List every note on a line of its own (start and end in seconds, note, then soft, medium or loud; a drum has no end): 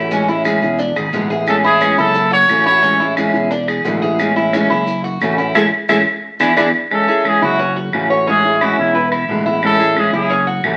0.00 0.57 A1 medium
0.00 0.11 A3 soft
0.00 0.11 C#4 soft
0.00 0.11 E4 medium
0.00 0.11 F#4 soft
0.11 0.28 E3 medium
0.11 0.28 G#3 medium
0.11 0.28 C#4 medium
0.11 0.27 E4 medium
0.11 maracas medium
0.28 0.45 G#3 soft
0.28 0.45 C#4 soft
0.28 0.44 E4 medium
0.28 0.45 E4 medium
0.28 maracas soft
0.45 0.61 E3 medium
0.45 0.62 G#3 medium
0.45 0.62 C#4 medium
0.45 0.61 E4 medium
0.45 0.78 G#4 medium
0.45 claves medium
0.45 maracas medium
0.62 0.94 E1 medium
0.62 0.79 G#3 soft
0.62 0.79 C#4 soft
0.62 0.78 E4 medium
0.62 maracas soft
0.79 0.96 D4 medium
0.79 muted steel-string acoustic guitar stroke medium
0.79 maracas medium
0.96 1.12 G#1 medium
0.96 1.29 G#4 medium
0.96 claves medium
0.96 maracas soft
1.13 1.92 A1 loud
1.13 1.29 B2 medium
1.13 1.29 D3 medium
1.13 1.30 G#3 medium
1.13 1.29 B3 medium
1.13 1.29 E4 medium
1.13 maracas medium
1.30 1.46 G#3 soft
1.30 1.47 B3 soft
1.30 1.46 E4 soft
1.30 1.63 G#4 medium
1.30 maracas soft
1.47 1.63 E3 medium
1.47 1.63 G#3 medium
1.47 1.63 C#4 medium
1.47 1.62 E4 medium
1.47 1.56 A4 medium
1.47 claves medium
1.47 maracas medium
1.63 1.80 G#3 soft
1.63 1.80 C#4 medium
1.63 1.80 E4 medium
1.63 1.81 E4 medium
1.63 1.96 G#4 medium
1.63 maracas soft
1.80 1.97 E3 medium
1.80 1.97 G#3 medium
1.80 1.97 C#4 medium
1.80 1.97 E4 medium
1.80 claves medium
1.80 maracas medium
1.97 2.45 F#1 loud
1.97 2.15 G#3 soft
1.97 2.14 C#4 soft
1.97 2.14 E4 soft
1.97 2.31 E4 medium
1.97 2.30 A4 medium
1.97 maracas soft
2.14 muted steel-string acoustic guitar stroke medium
2.14 maracas medium
2.31 2.65 F#4 medium
2.31 2.64 C#5 loud
2.31 maracas soft
2.49 3.28 A1 medium
2.49 2.65 C#3 medium
2.49 2.65 E3 medium
2.49 2.66 A3 medium
2.49 2.66 C#4 medium
2.49 2.64 F#4 medium
2.49 claves medium
2.49 maracas medium
2.66 2.83 A3 soft
2.66 2.83 C#4 soft
2.66 2.82 E4 medium
2.66 2.82 F#4 medium
2.66 3.14 C#5 loud
2.66 maracas soft
2.83 2.99 E3 medium
2.83 2.99 G#3 medium
2.83 2.99 C#4 medium
2.83 2.98 E4 medium
2.83 maracas medium
2.99 3.16 G#3 soft
2.99 3.16 C#4 soft
2.99 3.16 E4 medium
2.99 maracas soft
3.16 3.33 E3 medium
3.16 3.33 G#3 medium
3.16 3.33 C#4 medium
3.16 3.32 E4 medium
3.16 3.50 G#4 medium
3.16 claves medium
3.16 maracas medium
3.33 3.81 E1 medium
3.33 3.50 G#3 soft
3.33 3.51 C#4 soft
3.33 3.50 E4 medium
3.33 maracas soft
3.51 3.67 D4 medium
3.51 muted steel-string acoustic guitar stroke medium
3.51 maracas medium
3.68 4.01 G#4 medium
3.68 claves medium
3.68 maracas soft
3.84 4.64 A1 loud
3.84 4.01 B2 medium
3.84 4.01 D3 medium
3.84 4.01 G#3 medium
3.84 4.02 B3 medium
3.84 4.01 E4 medium
3.84 maracas medium
4.02 4.18 G#3 soft
4.02 4.19 B3 soft
4.02 4.18 E4 medium
4.02 4.35 G#4 medium
4.02 maracas soft
4.19 4.35 E3 medium
4.19 4.36 G#3 medium
4.19 4.36 C#4 medium
4.19 4.35 E4 medium
4.19 claves medium
4.19 maracas medium
4.36 4.52 G#3 soft
4.36 4.53 C#4 soft
4.36 4.52 E4 medium
4.36 4.53 E4 medium
4.36 maracas soft
4.53 4.69 E3 medium
4.53 4.70 G#3 medium
4.53 4.70 C#4 medium
4.53 4.69 E4 medium
4.53 claves medium
4.53 maracas medium
4.70 5.18 F#1 medium
4.70 4.87 G#3 soft
4.70 4.87 C#4 soft
4.70 5.03 E4 medium
4.70 4.86 E4 medium
4.70 maracas soft
4.87 muted steel-string acoustic guitar stroke medium
4.87 maracas medium
5.04 5.37 F#4 medium
5.04 maracas soft
5.21 5.53 A1 loud
5.21 5.37 C#3 medium
5.21 5.38 E3 medium
5.21 5.38 A3 medium
5.21 5.37 C#4 medium
5.21 5.36 F#4 medium
5.21 claves medium
5.21 maracas medium
5.38 5.54 A3 soft
5.38 5.54 C#4 medium
5.38 5.54 E4 medium
5.38 5.54 F#4 medium
5.38 maracas soft
5.55 5.68 A1 medium
5.55 5.66 G#3 medium
5.55 5.66 A3 medium
5.55 5.66 C#4 loud
5.55 5.66 E4 medium
5.55 5.66 G#4 loud
5.55 5.66 A4 medium
5.55 claves loud
5.55 maracas loud
5.89 6.02 A1 medium
5.89 6.00 G#3 loud
5.89 6.00 A3 medium
5.89 6.00 C#4 loud
5.89 6.00 E4 medium
5.89 6.00 G#4 loud
5.89 6.00 A4 medium
5.89 claves loud
5.89 maracas loud
6.40 6.53 E2 medium
6.40 6.51 B3 medium
6.40 6.51 D4 loud
6.40 6.51 D4 medium
6.40 6.51 E4 medium
6.40 6.51 G#4 medium
6.40 claves medium
6.40 maracas loud
6.57 6.70 E2 medium
6.57 6.68 B3 loud
6.57 6.68 D4 medium
6.57 6.68 D4 loud
6.57 6.68 E4 medium
6.57 6.68 G#4 medium
6.57 claves loud
6.57 maracas loud
6.90 7.07 E3 medium
6.90 7.07 G#3 medium
6.90 7.07 C#4 medium
6.90 7.06 E4 medium
6.90 7.30 A4 medium
6.90 claves medium
7.08 7.24 G#3 soft
7.08 7.24 C#4 soft
7.08 7.24 E4 soft
7.08 7.41 G#4 medium
7.24 7.41 E3 medium
7.24 7.41 G#3 medium
7.24 7.41 C#4 medium
7.24 7.40 E4 medium
7.24 claves medium
7.28 7.44 G#4 medium
7.42 7.89 F#1 medium
7.42 7.59 G#3 soft
7.42 7.58 C#4 soft
7.42 7.58 E4 medium
7.42 7.59 E4 medium
7.42 7.75 F#4 medium
7.58 7.76 C#4 medium
7.58 muted steel-string acoustic guitar stroke medium
7.76 8.09 F#4 medium
7.92 8.72 A1 medium
7.92 8.09 C#3 medium
7.92 8.09 E3 medium
7.92 8.10 A3 medium
7.92 8.10 C#4 medium
7.92 8.09 F#4 medium
7.92 claves medium
8.10 8.27 A3 soft
8.10 8.27 C#4 soft
8.10 8.26 F#4 medium
8.10 8.27 C#5 medium
8.26 8.43 E3 medium
8.26 8.43 G#3 medium
8.26 8.60 C#4 medium
8.26 8.44 C#4 medium
8.26 8.43 E4 medium
8.26 8.65 G#4 medium
8.44 8.60 G#3 soft
8.44 8.61 C#4 soft
8.44 8.60 E4 medium
8.61 8.77 E3 medium
8.61 8.78 G#3 medium
8.61 8.78 C#4 medium
8.61 8.94 E4 medium
8.61 8.77 E4 medium
8.61 8.79 F#4 medium
8.61 claves medium
8.78 9.25 E1 loud
8.78 8.94 G#3 soft
8.78 8.95 C#4 soft
8.78 8.94 E4 soft
8.78 9.10 E4 medium
8.95 9.11 B4 medium
8.95 muted steel-string acoustic guitar stroke medium
9.12 9.45 E4 medium
9.12 claves medium
9.28 10.08 A1 loud
9.28 9.45 B2 medium
9.28 9.45 D3 medium
9.28 9.45 G#3 medium
9.28 9.45 B3 medium
9.28 9.44 E4 medium
9.46 9.62 G#3 soft
9.46 9.62 B3 soft
9.46 9.62 E4 medium
9.46 9.79 E4 medium
9.62 9.79 E3 medium
9.62 9.79 G#3 medium
9.62 9.78 C#4 medium
9.62 9.77 E4 medium
9.62 10.01 A4 loud
9.62 claves medium
9.79 9.95 G#3 soft
9.79 9.96 C#4 soft
9.79 9.95 E4 medium
9.79 10.12 G#4 medium
9.96 10.12 E3 medium
9.96 10.13 G#3 medium
9.96 10.12 C#4 medium
9.96 10.11 E4 medium
9.96 10.14 G#4 medium
9.96 claves medium
10.12 10.60 F#1 medium
10.12 10.29 G#3 soft
10.12 10.29 C#4 soft
10.12 10.29 E4 soft
10.12 10.30 E4 medium
10.12 10.46 G#4 medium
10.29 10.47 C#4 medium
10.29 muted steel-string acoustic guitar stroke medium
10.47 10.77 F#4 medium
10.63 10.77 A1 medium
10.63 10.77 C#3 medium
10.63 10.77 E3 medium
10.63 10.77 A3 medium
10.63 10.77 C#4 medium
10.63 10.77 F#4 medium
10.63 claves medium